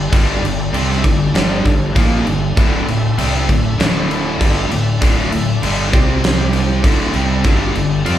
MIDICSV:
0, 0, Header, 1, 5, 480
1, 0, Start_track
1, 0, Tempo, 610376
1, 100, Time_signature, 4, 2, 24, 8
1, 6437, End_track
2, 0, Start_track
2, 0, Title_t, "Tonewheel organ"
2, 0, Program_c, 0, 16
2, 0, Note_on_c, 0, 55, 65
2, 0, Note_on_c, 0, 62, 66
2, 0, Note_on_c, 0, 69, 56
2, 1986, Note_off_c, 0, 69, 0
2, 1992, Note_off_c, 0, 55, 0
2, 2014, Note_on_c, 0, 76, 71
2, 2020, Note_on_c, 0, 69, 57
2, 4624, Note_off_c, 0, 62, 0
2, 4630, Note_off_c, 0, 76, 0
2, 4633, Note_off_c, 0, 69, 0
2, 4660, Note_on_c, 0, 74, 72
2, 4662, Note_on_c, 0, 67, 60
2, 4664, Note_on_c, 0, 60, 65
2, 5372, Note_off_c, 0, 74, 0
2, 5372, Note_on_c, 0, 62, 66
2, 5372, Note_on_c, 0, 76, 76
2, 5373, Note_off_c, 0, 67, 0
2, 5374, Note_off_c, 0, 60, 0
2, 5376, Note_on_c, 0, 69, 62
2, 5849, Note_off_c, 0, 76, 0
2, 5869, Note_on_c, 0, 55, 66
2, 6437, Note_off_c, 0, 55, 0
2, 6437, Note_off_c, 0, 62, 0
2, 6437, Note_off_c, 0, 69, 0
2, 6437, End_track
3, 0, Start_track
3, 0, Title_t, "Distorted electric guitar"
3, 0, Program_c, 1, 30
3, 95, Note_on_c, 1, 43, 97
3, 98, Note_on_c, 1, 50, 94
3, 103, Note_on_c, 1, 55, 105
3, 330, Note_off_c, 1, 43, 0
3, 332, Note_off_c, 1, 50, 0
3, 334, Note_off_c, 1, 55, 0
3, 342, Note_on_c, 1, 43, 67
3, 348, Note_on_c, 1, 50, 71
3, 533, Note_off_c, 1, 43, 0
3, 536, Note_off_c, 1, 50, 0
3, 572, Note_on_c, 1, 48, 87
3, 576, Note_on_c, 1, 55, 92
3, 585, Note_on_c, 1, 60, 92
3, 809, Note_off_c, 1, 48, 0
3, 811, Note_off_c, 1, 55, 0
3, 815, Note_off_c, 1, 60, 0
3, 819, Note_on_c, 1, 43, 59
3, 823, Note_on_c, 1, 50, 73
3, 1012, Note_off_c, 1, 43, 0
3, 1014, Note_off_c, 1, 50, 0
3, 1054, Note_on_c, 1, 43, 88
3, 1062, Note_on_c, 1, 55, 96
3, 1063, Note_on_c, 1, 50, 100
3, 1290, Note_off_c, 1, 43, 0
3, 1294, Note_off_c, 1, 55, 0
3, 1295, Note_off_c, 1, 50, 0
3, 1303, Note_on_c, 1, 43, 64
3, 1305, Note_on_c, 1, 50, 71
3, 1494, Note_off_c, 1, 43, 0
3, 1495, Note_off_c, 1, 50, 0
3, 1534, Note_on_c, 1, 46, 96
3, 1539, Note_on_c, 1, 58, 100
3, 1540, Note_on_c, 1, 53, 104
3, 1771, Note_off_c, 1, 46, 0
3, 1773, Note_off_c, 1, 53, 0
3, 1773, Note_off_c, 1, 58, 0
3, 1778, Note_on_c, 1, 43, 67
3, 1786, Note_on_c, 1, 50, 70
3, 1972, Note_off_c, 1, 43, 0
3, 1976, Note_off_c, 1, 50, 0
3, 2032, Note_on_c, 1, 38, 91
3, 2036, Note_on_c, 1, 45, 109
3, 2036, Note_on_c, 1, 50, 101
3, 2254, Note_off_c, 1, 38, 0
3, 2259, Note_off_c, 1, 45, 0
3, 2262, Note_off_c, 1, 50, 0
3, 2264, Note_on_c, 1, 38, 61
3, 2269, Note_on_c, 1, 45, 72
3, 2455, Note_off_c, 1, 38, 0
3, 2457, Note_off_c, 1, 45, 0
3, 2501, Note_on_c, 1, 48, 89
3, 2507, Note_on_c, 1, 60, 95
3, 2508, Note_on_c, 1, 55, 98
3, 2734, Note_off_c, 1, 48, 0
3, 2737, Note_off_c, 1, 60, 0
3, 2738, Note_off_c, 1, 55, 0
3, 2744, Note_on_c, 1, 38, 61
3, 2747, Note_on_c, 1, 45, 71
3, 2935, Note_off_c, 1, 38, 0
3, 2936, Note_off_c, 1, 45, 0
3, 2978, Note_on_c, 1, 38, 87
3, 2984, Note_on_c, 1, 45, 102
3, 2986, Note_on_c, 1, 50, 98
3, 3453, Note_off_c, 1, 38, 0
3, 3456, Note_off_c, 1, 45, 0
3, 3456, Note_off_c, 1, 50, 0
3, 3457, Note_on_c, 1, 43, 84
3, 3465, Note_on_c, 1, 50, 95
3, 3466, Note_on_c, 1, 55, 99
3, 3692, Note_off_c, 1, 43, 0
3, 3696, Note_off_c, 1, 50, 0
3, 3696, Note_off_c, 1, 55, 0
3, 3708, Note_on_c, 1, 38, 69
3, 3713, Note_on_c, 1, 45, 75
3, 3896, Note_off_c, 1, 38, 0
3, 3899, Note_off_c, 1, 45, 0
3, 3941, Note_on_c, 1, 38, 101
3, 3952, Note_on_c, 1, 45, 102
3, 3956, Note_on_c, 1, 50, 109
3, 4174, Note_off_c, 1, 38, 0
3, 4177, Note_off_c, 1, 45, 0
3, 4181, Note_off_c, 1, 50, 0
3, 4183, Note_on_c, 1, 38, 67
3, 4186, Note_on_c, 1, 45, 77
3, 4374, Note_off_c, 1, 38, 0
3, 4375, Note_off_c, 1, 45, 0
3, 4426, Note_on_c, 1, 43, 84
3, 4430, Note_on_c, 1, 50, 93
3, 4436, Note_on_c, 1, 55, 104
3, 4661, Note_off_c, 1, 43, 0
3, 4661, Note_on_c, 1, 48, 89
3, 4667, Note_off_c, 1, 50, 0
3, 4667, Note_off_c, 1, 55, 0
3, 4667, Note_on_c, 1, 55, 94
3, 4672, Note_on_c, 1, 60, 106
3, 5372, Note_off_c, 1, 48, 0
3, 5375, Note_off_c, 1, 55, 0
3, 5377, Note_off_c, 1, 60, 0
3, 5386, Note_on_c, 1, 38, 93
3, 5388, Note_on_c, 1, 45, 97
3, 5396, Note_on_c, 1, 50, 100
3, 5615, Note_off_c, 1, 38, 0
3, 5615, Note_off_c, 1, 45, 0
3, 5618, Note_on_c, 1, 48, 98
3, 5618, Note_on_c, 1, 55, 104
3, 5620, Note_off_c, 1, 50, 0
3, 5627, Note_on_c, 1, 60, 110
3, 5851, Note_off_c, 1, 48, 0
3, 5851, Note_off_c, 1, 55, 0
3, 5855, Note_off_c, 1, 60, 0
3, 5857, Note_on_c, 1, 43, 100
3, 5860, Note_on_c, 1, 50, 94
3, 5861, Note_on_c, 1, 55, 96
3, 6084, Note_off_c, 1, 43, 0
3, 6091, Note_off_c, 1, 50, 0
3, 6091, Note_off_c, 1, 55, 0
3, 6094, Note_on_c, 1, 43, 61
3, 6099, Note_on_c, 1, 50, 72
3, 6287, Note_off_c, 1, 43, 0
3, 6290, Note_off_c, 1, 50, 0
3, 6328, Note_on_c, 1, 53, 90
3, 6332, Note_on_c, 1, 60, 99
3, 6333, Note_on_c, 1, 65, 96
3, 6437, Note_off_c, 1, 53, 0
3, 6437, Note_off_c, 1, 60, 0
3, 6437, Note_off_c, 1, 65, 0
3, 6437, End_track
4, 0, Start_track
4, 0, Title_t, "Fingered electric bass"
4, 0, Program_c, 2, 33
4, 0, Note_on_c, 2, 31, 76
4, 84, Note_off_c, 2, 31, 0
4, 98, Note_on_c, 2, 31, 95
4, 322, Note_off_c, 2, 31, 0
4, 336, Note_on_c, 2, 31, 79
4, 561, Note_off_c, 2, 31, 0
4, 579, Note_on_c, 2, 36, 89
4, 803, Note_off_c, 2, 36, 0
4, 823, Note_on_c, 2, 31, 82
4, 1042, Note_off_c, 2, 31, 0
4, 1047, Note_on_c, 2, 31, 83
4, 1277, Note_off_c, 2, 31, 0
4, 1298, Note_on_c, 2, 31, 79
4, 1523, Note_off_c, 2, 31, 0
4, 1543, Note_on_c, 2, 34, 94
4, 1765, Note_off_c, 2, 34, 0
4, 1778, Note_on_c, 2, 31, 75
4, 2003, Note_off_c, 2, 31, 0
4, 2023, Note_on_c, 2, 26, 95
4, 2246, Note_off_c, 2, 26, 0
4, 2257, Note_on_c, 2, 26, 82
4, 2482, Note_off_c, 2, 26, 0
4, 2499, Note_on_c, 2, 36, 92
4, 2724, Note_off_c, 2, 36, 0
4, 2744, Note_on_c, 2, 26, 83
4, 2966, Note_off_c, 2, 26, 0
4, 2974, Note_on_c, 2, 26, 89
4, 3426, Note_off_c, 2, 26, 0
4, 3469, Note_on_c, 2, 31, 99
4, 3688, Note_off_c, 2, 31, 0
4, 3698, Note_on_c, 2, 26, 79
4, 3922, Note_off_c, 2, 26, 0
4, 3950, Note_on_c, 2, 26, 97
4, 4169, Note_off_c, 2, 26, 0
4, 4188, Note_on_c, 2, 26, 79
4, 4408, Note_off_c, 2, 26, 0
4, 4427, Note_on_c, 2, 31, 94
4, 4647, Note_off_c, 2, 31, 0
4, 4668, Note_on_c, 2, 36, 103
4, 5351, Note_off_c, 2, 36, 0
4, 5379, Note_on_c, 2, 26, 100
4, 5602, Note_off_c, 2, 26, 0
4, 5630, Note_on_c, 2, 36, 98
4, 5847, Note_off_c, 2, 36, 0
4, 5856, Note_on_c, 2, 31, 97
4, 6080, Note_off_c, 2, 31, 0
4, 6099, Note_on_c, 2, 31, 86
4, 6321, Note_off_c, 2, 31, 0
4, 6348, Note_on_c, 2, 41, 95
4, 6437, Note_off_c, 2, 41, 0
4, 6437, End_track
5, 0, Start_track
5, 0, Title_t, "Drums"
5, 99, Note_on_c, 9, 36, 113
5, 101, Note_on_c, 9, 49, 84
5, 178, Note_off_c, 9, 36, 0
5, 180, Note_off_c, 9, 49, 0
5, 352, Note_on_c, 9, 49, 64
5, 431, Note_off_c, 9, 49, 0
5, 583, Note_on_c, 9, 49, 83
5, 661, Note_off_c, 9, 49, 0
5, 722, Note_on_c, 9, 38, 34
5, 801, Note_off_c, 9, 38, 0
5, 819, Note_on_c, 9, 36, 85
5, 821, Note_on_c, 9, 49, 64
5, 898, Note_off_c, 9, 36, 0
5, 899, Note_off_c, 9, 49, 0
5, 1062, Note_on_c, 9, 49, 74
5, 1069, Note_on_c, 9, 38, 113
5, 1140, Note_off_c, 9, 49, 0
5, 1148, Note_off_c, 9, 38, 0
5, 1302, Note_on_c, 9, 36, 84
5, 1311, Note_on_c, 9, 49, 58
5, 1381, Note_off_c, 9, 36, 0
5, 1390, Note_off_c, 9, 49, 0
5, 1541, Note_on_c, 9, 36, 95
5, 1541, Note_on_c, 9, 49, 83
5, 1619, Note_off_c, 9, 49, 0
5, 1620, Note_off_c, 9, 36, 0
5, 1782, Note_on_c, 9, 49, 54
5, 1861, Note_off_c, 9, 49, 0
5, 2023, Note_on_c, 9, 36, 113
5, 2026, Note_on_c, 9, 49, 78
5, 2102, Note_off_c, 9, 36, 0
5, 2105, Note_off_c, 9, 49, 0
5, 2267, Note_on_c, 9, 49, 55
5, 2346, Note_off_c, 9, 49, 0
5, 2504, Note_on_c, 9, 49, 83
5, 2582, Note_off_c, 9, 49, 0
5, 2633, Note_on_c, 9, 38, 33
5, 2712, Note_off_c, 9, 38, 0
5, 2746, Note_on_c, 9, 36, 77
5, 2747, Note_on_c, 9, 49, 63
5, 2824, Note_off_c, 9, 36, 0
5, 2825, Note_off_c, 9, 49, 0
5, 2987, Note_on_c, 9, 49, 78
5, 2995, Note_on_c, 9, 38, 113
5, 3066, Note_off_c, 9, 49, 0
5, 3073, Note_off_c, 9, 38, 0
5, 3230, Note_on_c, 9, 49, 62
5, 3309, Note_off_c, 9, 49, 0
5, 3467, Note_on_c, 9, 36, 90
5, 3472, Note_on_c, 9, 49, 87
5, 3545, Note_off_c, 9, 36, 0
5, 3550, Note_off_c, 9, 49, 0
5, 3707, Note_on_c, 9, 49, 64
5, 3786, Note_off_c, 9, 49, 0
5, 3944, Note_on_c, 9, 49, 89
5, 3946, Note_on_c, 9, 36, 108
5, 4023, Note_off_c, 9, 49, 0
5, 4025, Note_off_c, 9, 36, 0
5, 4186, Note_on_c, 9, 49, 66
5, 4264, Note_off_c, 9, 49, 0
5, 4427, Note_on_c, 9, 49, 93
5, 4506, Note_off_c, 9, 49, 0
5, 4667, Note_on_c, 9, 36, 106
5, 4672, Note_on_c, 9, 49, 63
5, 4745, Note_off_c, 9, 36, 0
5, 4750, Note_off_c, 9, 49, 0
5, 4906, Note_on_c, 9, 49, 81
5, 4914, Note_on_c, 9, 38, 113
5, 4985, Note_off_c, 9, 49, 0
5, 4992, Note_off_c, 9, 38, 0
5, 5135, Note_on_c, 9, 49, 61
5, 5213, Note_off_c, 9, 49, 0
5, 5379, Note_on_c, 9, 36, 94
5, 5379, Note_on_c, 9, 49, 84
5, 5457, Note_off_c, 9, 36, 0
5, 5458, Note_off_c, 9, 49, 0
5, 5611, Note_on_c, 9, 49, 56
5, 5690, Note_off_c, 9, 49, 0
5, 5851, Note_on_c, 9, 49, 82
5, 5856, Note_on_c, 9, 36, 106
5, 5930, Note_off_c, 9, 49, 0
5, 5934, Note_off_c, 9, 36, 0
5, 6097, Note_on_c, 9, 49, 59
5, 6176, Note_off_c, 9, 49, 0
5, 6338, Note_on_c, 9, 49, 82
5, 6417, Note_off_c, 9, 49, 0
5, 6437, End_track
0, 0, End_of_file